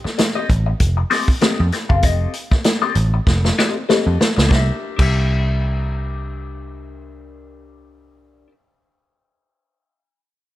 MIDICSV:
0, 0, Header, 1, 6, 480
1, 0, Start_track
1, 0, Tempo, 617920
1, 1584, Time_signature, 4, 2, 24, 8
1, 8195, End_track
2, 0, Start_track
2, 0, Title_t, "Clean electric guitar"
2, 0, Program_c, 0, 27
2, 275, Note_on_c, 0, 75, 81
2, 281, Note_on_c, 0, 67, 72
2, 281, Note_on_c, 0, 69, 68
2, 285, Note_on_c, 0, 60, 61
2, 379, Note_off_c, 0, 60, 0
2, 381, Note_off_c, 0, 67, 0
2, 382, Note_off_c, 0, 75, 0
2, 384, Note_off_c, 0, 69, 0
2, 857, Note_on_c, 0, 60, 89
2, 860, Note_on_c, 0, 67, 91
2, 860, Note_on_c, 0, 69, 89
2, 865, Note_on_c, 0, 75, 95
2, 990, Note_off_c, 0, 75, 0
2, 994, Note_off_c, 0, 67, 0
2, 994, Note_off_c, 0, 69, 0
2, 1011, Note_off_c, 0, 60, 0
2, 1097, Note_on_c, 0, 60, 91
2, 1101, Note_on_c, 0, 69, 104
2, 1102, Note_on_c, 0, 67, 98
2, 1104, Note_on_c, 0, 75, 113
2, 1251, Note_off_c, 0, 60, 0
2, 1254, Note_off_c, 0, 67, 0
2, 1254, Note_off_c, 0, 69, 0
2, 1255, Note_off_c, 0, 75, 0
2, 1471, Note_on_c, 0, 77, 59
2, 1474, Note_on_c, 0, 67, 52
2, 1474, Note_on_c, 0, 69, 61
2, 1477, Note_on_c, 0, 60, 48
2, 1569, Note_off_c, 0, 60, 0
2, 1570, Note_off_c, 0, 77, 0
2, 1572, Note_off_c, 0, 67, 0
2, 1572, Note_off_c, 0, 69, 0
2, 1578, Note_on_c, 0, 60, 72
2, 1582, Note_on_c, 0, 67, 85
2, 1585, Note_on_c, 0, 69, 87
2, 1586, Note_on_c, 0, 75, 94
2, 1804, Note_off_c, 0, 60, 0
2, 1806, Note_off_c, 0, 67, 0
2, 1807, Note_off_c, 0, 69, 0
2, 1808, Note_off_c, 0, 75, 0
2, 2189, Note_on_c, 0, 75, 79
2, 2190, Note_on_c, 0, 69, 81
2, 2193, Note_on_c, 0, 67, 70
2, 2195, Note_on_c, 0, 60, 70
2, 2288, Note_off_c, 0, 60, 0
2, 2289, Note_off_c, 0, 67, 0
2, 2293, Note_off_c, 0, 69, 0
2, 2294, Note_off_c, 0, 75, 0
2, 2785, Note_on_c, 0, 60, 84
2, 2786, Note_on_c, 0, 67, 90
2, 2787, Note_on_c, 0, 69, 93
2, 2791, Note_on_c, 0, 75, 98
2, 2908, Note_off_c, 0, 75, 0
2, 2912, Note_off_c, 0, 69, 0
2, 2915, Note_off_c, 0, 67, 0
2, 2950, Note_off_c, 0, 60, 0
2, 3020, Note_on_c, 0, 60, 79
2, 3022, Note_on_c, 0, 67, 88
2, 3025, Note_on_c, 0, 69, 88
2, 3030, Note_on_c, 0, 75, 89
2, 3245, Note_off_c, 0, 60, 0
2, 3246, Note_off_c, 0, 67, 0
2, 3247, Note_off_c, 0, 69, 0
2, 3250, Note_off_c, 0, 75, 0
2, 3486, Note_on_c, 0, 62, 79
2, 3504, Note_on_c, 0, 67, 72
2, 3514, Note_on_c, 0, 70, 86
2, 3526, Note_on_c, 0, 76, 79
2, 3854, Note_off_c, 0, 62, 0
2, 3857, Note_on_c, 0, 62, 73
2, 3869, Note_off_c, 0, 67, 0
2, 3873, Note_on_c, 0, 67, 81
2, 3880, Note_off_c, 0, 76, 0
2, 3883, Note_off_c, 0, 70, 0
2, 3886, Note_on_c, 0, 70, 86
2, 3895, Note_on_c, 0, 76, 101
2, 6578, Note_off_c, 0, 62, 0
2, 6591, Note_off_c, 0, 67, 0
2, 6605, Note_off_c, 0, 70, 0
2, 6614, Note_off_c, 0, 76, 0
2, 8195, End_track
3, 0, Start_track
3, 0, Title_t, "Picked electric bass"
3, 0, Program_c, 1, 34
3, 386, Note_on_c, 1, 33, 91
3, 559, Note_off_c, 1, 33, 0
3, 624, Note_on_c, 1, 29, 91
3, 798, Note_off_c, 1, 29, 0
3, 1245, Note_on_c, 1, 41, 107
3, 1319, Note_off_c, 1, 41, 0
3, 1476, Note_on_c, 1, 30, 112
3, 1579, Note_off_c, 1, 30, 0
3, 1579, Note_on_c, 1, 29, 109
3, 1755, Note_off_c, 1, 29, 0
3, 2298, Note_on_c, 1, 33, 81
3, 2474, Note_off_c, 1, 33, 0
3, 2542, Note_on_c, 1, 29, 89
3, 2716, Note_off_c, 1, 29, 0
3, 3160, Note_on_c, 1, 41, 105
3, 3236, Note_off_c, 1, 41, 0
3, 3402, Note_on_c, 1, 37, 95
3, 3477, Note_off_c, 1, 37, 0
3, 3504, Note_on_c, 1, 36, 103
3, 3648, Note_off_c, 1, 36, 0
3, 3876, Note_on_c, 1, 36, 105
3, 6556, Note_off_c, 1, 36, 0
3, 8195, End_track
4, 0, Start_track
4, 0, Title_t, "Muted clean electric guitar strokes"
4, 35, Note_on_c, 9, 29, 54
4, 113, Note_off_c, 9, 29, 0
4, 140, Note_on_c, 9, 29, 44
4, 218, Note_off_c, 9, 29, 0
4, 515, Note_on_c, 9, 29, 59
4, 593, Note_off_c, 9, 29, 0
4, 754, Note_on_c, 9, 29, 47
4, 832, Note_off_c, 9, 29, 0
4, 1000, Note_on_c, 9, 29, 51
4, 1077, Note_off_c, 9, 29, 0
4, 1343, Note_on_c, 9, 29, 47
4, 1420, Note_off_c, 9, 29, 0
4, 1952, Note_on_c, 9, 29, 51
4, 2030, Note_off_c, 9, 29, 0
4, 2056, Note_on_c, 9, 29, 46
4, 2134, Note_off_c, 9, 29, 0
4, 2438, Note_on_c, 9, 29, 49
4, 2516, Note_off_c, 9, 29, 0
4, 2679, Note_on_c, 9, 29, 49
4, 2757, Note_off_c, 9, 29, 0
4, 2918, Note_on_c, 9, 29, 45
4, 2995, Note_off_c, 9, 29, 0
4, 3258, Note_on_c, 9, 29, 46
4, 3336, Note_off_c, 9, 29, 0
4, 3391, Note_on_c, 9, 29, 56
4, 3469, Note_off_c, 9, 29, 0
4, 8195, End_track
5, 0, Start_track
5, 0, Title_t, "Muted picked electric bass strokes"
5, 40, Note_on_c, 9, 29, 50
5, 118, Note_off_c, 9, 29, 0
5, 1955, Note_on_c, 9, 29, 52
5, 2033, Note_off_c, 9, 29, 0
5, 8195, End_track
6, 0, Start_track
6, 0, Title_t, "Drums"
6, 44, Note_on_c, 9, 38, 34
6, 122, Note_off_c, 9, 38, 0
6, 143, Note_on_c, 9, 42, 96
6, 151, Note_on_c, 9, 38, 120
6, 221, Note_off_c, 9, 42, 0
6, 228, Note_off_c, 9, 38, 0
6, 385, Note_on_c, 9, 36, 113
6, 385, Note_on_c, 9, 42, 80
6, 463, Note_off_c, 9, 36, 0
6, 463, Note_off_c, 9, 42, 0
6, 620, Note_on_c, 9, 42, 105
6, 624, Note_on_c, 9, 36, 104
6, 697, Note_off_c, 9, 42, 0
6, 701, Note_off_c, 9, 36, 0
6, 859, Note_on_c, 9, 46, 81
6, 867, Note_on_c, 9, 38, 44
6, 937, Note_off_c, 9, 46, 0
6, 945, Note_off_c, 9, 38, 0
6, 994, Note_on_c, 9, 36, 95
6, 1072, Note_off_c, 9, 36, 0
6, 1097, Note_on_c, 9, 42, 83
6, 1105, Note_on_c, 9, 38, 124
6, 1175, Note_off_c, 9, 42, 0
6, 1182, Note_off_c, 9, 38, 0
6, 1338, Note_on_c, 9, 42, 71
6, 1344, Note_on_c, 9, 38, 37
6, 1416, Note_off_c, 9, 42, 0
6, 1421, Note_off_c, 9, 38, 0
6, 1475, Note_on_c, 9, 36, 99
6, 1553, Note_off_c, 9, 36, 0
6, 1573, Note_on_c, 9, 42, 89
6, 1579, Note_on_c, 9, 36, 127
6, 1651, Note_off_c, 9, 42, 0
6, 1657, Note_off_c, 9, 36, 0
6, 1814, Note_on_c, 9, 42, 75
6, 1892, Note_off_c, 9, 42, 0
6, 1953, Note_on_c, 9, 38, 33
6, 1954, Note_on_c, 9, 36, 95
6, 2031, Note_off_c, 9, 38, 0
6, 2032, Note_off_c, 9, 36, 0
6, 2053, Note_on_c, 9, 42, 83
6, 2060, Note_on_c, 9, 38, 127
6, 2131, Note_off_c, 9, 42, 0
6, 2138, Note_off_c, 9, 38, 0
6, 2293, Note_on_c, 9, 42, 88
6, 2371, Note_off_c, 9, 42, 0
6, 2539, Note_on_c, 9, 36, 95
6, 2539, Note_on_c, 9, 38, 64
6, 2616, Note_off_c, 9, 36, 0
6, 2617, Note_off_c, 9, 38, 0
6, 2678, Note_on_c, 9, 38, 67
6, 2756, Note_off_c, 9, 38, 0
6, 2786, Note_on_c, 9, 38, 83
6, 2863, Note_off_c, 9, 38, 0
6, 3027, Note_on_c, 9, 38, 97
6, 3105, Note_off_c, 9, 38, 0
6, 3269, Note_on_c, 9, 38, 113
6, 3347, Note_off_c, 9, 38, 0
6, 3405, Note_on_c, 9, 38, 104
6, 3483, Note_off_c, 9, 38, 0
6, 3503, Note_on_c, 9, 36, 115
6, 3508, Note_on_c, 9, 38, 90
6, 3580, Note_off_c, 9, 36, 0
6, 3586, Note_off_c, 9, 38, 0
6, 3876, Note_on_c, 9, 49, 86
6, 3877, Note_on_c, 9, 36, 112
6, 3954, Note_off_c, 9, 49, 0
6, 3955, Note_off_c, 9, 36, 0
6, 8195, End_track
0, 0, End_of_file